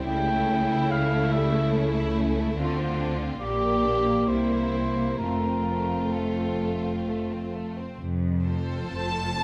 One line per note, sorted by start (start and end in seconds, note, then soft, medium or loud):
0.00 2.53 E4 soft
0.07 2.54 C#2 medium
0.07 2.53 C#3 medium
0.07 0.28 G3 medium
0.07 2.54 A3 medium
0.07 2.58 A3 medium
0.07 2.54 E4 soft
0.07 0.92 G5 medium
0.29 0.50 A3 soft
0.50 0.71 C#4 soft
0.72 0.92 E4 soft
0.91 1.13 C#4 soft
0.91 1.33 F5 medium
1.13 1.33 A3 soft
1.32 1.54 G3 soft
1.32 1.74 E5 medium
1.55 1.76 A3 soft
1.76 1.97 C#4 soft
1.97 2.17 E4 soft
2.17 2.38 C#4 soft
2.39 2.57 A3 soft
2.56 3.38 D2 medium
2.56 3.39 D3 medium
2.56 2.77 A3 medium
2.56 3.40 C4 medium
2.56 3.22 C4 soft
2.56 3.41 F4 soft
2.56 3.22 F4 soft
2.78 2.99 C4 soft
3.00 3.21 D4 soft
3.21 3.42 C4 soft
3.39 4.26 A#1 soft
3.39 4.27 A#2 soft
3.39 3.61 G3 soft
3.39 5.16 A#3 soft
3.39 5.17 A#3 medium
3.39 4.26 G4 soft
3.39 4.29 G4 soft
3.39 4.30 D5 medium
3.62 3.84 A#3 soft
3.84 4.06 D4 soft
4.05 4.28 A#3 soft
4.28 5.18 C2 soft
4.28 5.19 C3 soft
4.28 4.49 G3 soft
4.28 5.20 E4 soft
4.28 5.19 E4 soft
4.28 5.18 C5 medium
4.51 4.74 A#3 soft
4.73 4.97 C4 soft
4.97 5.21 A#3 soft
5.18 7.78 F1 soft
5.18 7.78 F2 soft
5.18 5.43 A3 soft
5.18 7.74 A3 soft
5.18 7.65 C4 soft
5.18 7.61 F4 soft
5.18 7.78 F4 soft
5.18 6.14 A#4 medium
5.45 5.68 C4 soft
5.70 5.93 A3 soft
5.93 6.15 C4 soft
6.13 7.05 A4 soft
6.17 6.39 A3 soft
6.41 6.62 C4 soft
6.63 6.84 A3 soft
6.84 7.06 C4 soft
7.08 7.30 A3 soft
7.31 7.53 C4 soft
7.54 7.77 A3 soft
7.77 7.99 C4 soft
7.99 8.79 F1 medium
7.99 8.79 F2 medium
8.44 9.37 C4 soft
8.44 9.37 F4 soft
8.44 9.37 A4 soft
8.44 9.36 C5 soft
8.90 9.44 F1 medium
8.90 9.44 F2 medium
8.90 9.44 A5 medium
9.39 9.44 A4 soft
9.39 9.44 C5 soft